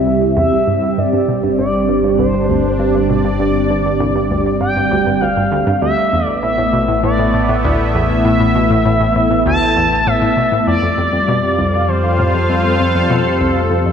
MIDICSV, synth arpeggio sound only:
0, 0, Header, 1, 2, 480
1, 0, Start_track
1, 0, Key_signature, 0, "minor"
1, 0, Tempo, 606061
1, 773, Time_signature, 4, 2, 24, 8
1, 11028, End_track
2, 0, Start_track
2, 0, Title_t, "Synth arpeggio sound"
2, 0, Program_c, 0, 84
2, 54, Note_on_c, 0, 36, 79
2, 135, Note_off_c, 0, 36, 0
2, 171, Note_on_c, 0, 36, 70
2, 227, Note_off_c, 0, 36, 0
2, 291, Note_on_c, 0, 40, 108
2, 374, Note_off_c, 0, 40, 0
2, 413, Note_on_c, 0, 36, 72
2, 468, Note_off_c, 0, 36, 0
2, 534, Note_on_c, 0, 43, 74
2, 615, Note_off_c, 0, 43, 0
2, 775, Note_on_c, 0, 43, 79
2, 829, Note_off_c, 0, 43, 0
2, 895, Note_on_c, 0, 43, 74
2, 927, Note_off_c, 0, 43, 0
2, 1017, Note_on_c, 0, 47, 78
2, 1047, Note_off_c, 0, 47, 0
2, 1136, Note_on_c, 0, 43, 73
2, 1167, Note_off_c, 0, 43, 0
2, 1257, Note_on_c, 0, 43, 80
2, 1337, Note_off_c, 0, 43, 0
2, 1496, Note_on_c, 0, 43, 76
2, 1576, Note_off_c, 0, 43, 0
2, 1616, Note_on_c, 0, 43, 74
2, 1669, Note_off_c, 0, 43, 0
2, 1734, Note_on_c, 0, 36, 99
2, 1816, Note_off_c, 0, 36, 0
2, 1854, Note_on_c, 0, 43, 73
2, 1908, Note_off_c, 0, 43, 0
2, 1976, Note_on_c, 0, 38, 74
2, 2057, Note_off_c, 0, 38, 0
2, 2212, Note_on_c, 0, 43, 85
2, 2267, Note_off_c, 0, 43, 0
2, 2333, Note_on_c, 0, 43, 72
2, 2366, Note_off_c, 0, 43, 0
2, 2451, Note_on_c, 0, 47, 80
2, 2485, Note_off_c, 0, 47, 0
2, 2571, Note_on_c, 0, 43, 74
2, 2605, Note_off_c, 0, 43, 0
2, 2690, Note_on_c, 0, 43, 78
2, 2773, Note_off_c, 0, 43, 0
2, 2933, Note_on_c, 0, 43, 77
2, 3015, Note_off_c, 0, 43, 0
2, 3055, Note_on_c, 0, 43, 74
2, 3109, Note_off_c, 0, 43, 0
2, 3171, Note_on_c, 0, 36, 98
2, 3254, Note_off_c, 0, 36, 0
2, 3292, Note_on_c, 0, 43, 76
2, 3347, Note_off_c, 0, 43, 0
2, 3411, Note_on_c, 0, 38, 75
2, 3494, Note_off_c, 0, 38, 0
2, 3650, Note_on_c, 0, 43, 82
2, 3706, Note_off_c, 0, 43, 0
2, 3773, Note_on_c, 0, 43, 77
2, 3806, Note_off_c, 0, 43, 0
2, 3891, Note_on_c, 0, 38, 101
2, 3925, Note_off_c, 0, 38, 0
2, 4011, Note_on_c, 0, 43, 74
2, 4045, Note_off_c, 0, 43, 0
2, 4131, Note_on_c, 0, 38, 85
2, 4186, Note_off_c, 0, 38, 0
2, 4251, Note_on_c, 0, 43, 72
2, 4334, Note_off_c, 0, 43, 0
2, 4370, Note_on_c, 0, 38, 106
2, 4453, Note_off_c, 0, 38, 0
2, 4489, Note_on_c, 0, 43, 99
2, 4524, Note_off_c, 0, 43, 0
2, 4612, Note_on_c, 0, 38, 93
2, 4694, Note_off_c, 0, 38, 0
2, 4852, Note_on_c, 0, 40, 72
2, 4934, Note_off_c, 0, 40, 0
2, 5090, Note_on_c, 0, 45, 81
2, 5146, Note_off_c, 0, 45, 0
2, 5209, Note_on_c, 0, 45, 74
2, 5244, Note_off_c, 0, 45, 0
2, 5331, Note_on_c, 0, 47, 74
2, 5365, Note_off_c, 0, 47, 0
2, 5450, Note_on_c, 0, 45, 72
2, 5484, Note_off_c, 0, 45, 0
2, 5571, Note_on_c, 0, 45, 83
2, 5654, Note_off_c, 0, 45, 0
2, 5694, Note_on_c, 0, 45, 76
2, 5748, Note_off_c, 0, 45, 0
2, 5813, Note_on_c, 0, 45, 75
2, 5895, Note_off_c, 0, 45, 0
2, 5934, Note_on_c, 0, 45, 76
2, 5988, Note_off_c, 0, 45, 0
2, 6055, Note_on_c, 0, 38, 104
2, 6136, Note_off_c, 0, 38, 0
2, 6297, Note_on_c, 0, 40, 77
2, 6377, Note_off_c, 0, 40, 0
2, 6534, Note_on_c, 0, 45, 83
2, 6588, Note_off_c, 0, 45, 0
2, 6656, Note_on_c, 0, 45, 75
2, 6687, Note_off_c, 0, 45, 0
2, 6774, Note_on_c, 0, 47, 72
2, 6806, Note_off_c, 0, 47, 0
2, 6895, Note_on_c, 0, 45, 72
2, 6927, Note_off_c, 0, 45, 0
2, 7013, Note_on_c, 0, 45, 84
2, 7095, Note_off_c, 0, 45, 0
2, 7131, Note_on_c, 0, 45, 70
2, 7186, Note_off_c, 0, 45, 0
2, 7252, Note_on_c, 0, 45, 72
2, 7334, Note_off_c, 0, 45, 0
2, 7370, Note_on_c, 0, 45, 76
2, 7426, Note_off_c, 0, 45, 0
2, 7492, Note_on_c, 0, 38, 102
2, 7574, Note_off_c, 0, 38, 0
2, 7734, Note_on_c, 0, 40, 81
2, 7815, Note_off_c, 0, 40, 0
2, 7974, Note_on_c, 0, 45, 87
2, 8028, Note_off_c, 0, 45, 0
2, 8094, Note_on_c, 0, 45, 75
2, 8126, Note_off_c, 0, 45, 0
2, 8212, Note_on_c, 0, 47, 80
2, 8245, Note_off_c, 0, 47, 0
2, 8333, Note_on_c, 0, 45, 73
2, 8365, Note_off_c, 0, 45, 0
2, 8454, Note_on_c, 0, 41, 82
2, 8535, Note_off_c, 0, 41, 0
2, 8573, Note_on_c, 0, 41, 78
2, 8628, Note_off_c, 0, 41, 0
2, 8694, Note_on_c, 0, 41, 76
2, 8776, Note_off_c, 0, 41, 0
2, 8814, Note_on_c, 0, 41, 73
2, 8868, Note_off_c, 0, 41, 0
2, 8936, Note_on_c, 0, 47, 101
2, 9016, Note_off_c, 0, 47, 0
2, 9176, Note_on_c, 0, 36, 78
2, 9256, Note_off_c, 0, 36, 0
2, 9414, Note_on_c, 0, 41, 86
2, 9468, Note_off_c, 0, 41, 0
2, 9535, Note_on_c, 0, 41, 74
2, 9567, Note_off_c, 0, 41, 0
2, 9656, Note_on_c, 0, 45, 79
2, 9687, Note_off_c, 0, 45, 0
2, 9777, Note_on_c, 0, 41, 78
2, 9807, Note_off_c, 0, 41, 0
2, 9897, Note_on_c, 0, 41, 83
2, 9977, Note_off_c, 0, 41, 0
2, 10016, Note_on_c, 0, 41, 74
2, 10069, Note_off_c, 0, 41, 0
2, 10137, Note_on_c, 0, 41, 75
2, 10217, Note_off_c, 0, 41, 0
2, 10258, Note_on_c, 0, 41, 72
2, 10310, Note_off_c, 0, 41, 0
2, 10376, Note_on_c, 0, 47, 102
2, 10456, Note_off_c, 0, 47, 0
2, 10616, Note_on_c, 0, 36, 77
2, 10696, Note_off_c, 0, 36, 0
2, 10854, Note_on_c, 0, 41, 79
2, 10908, Note_off_c, 0, 41, 0
2, 10976, Note_on_c, 0, 41, 75
2, 11007, Note_off_c, 0, 41, 0
2, 11028, End_track
0, 0, End_of_file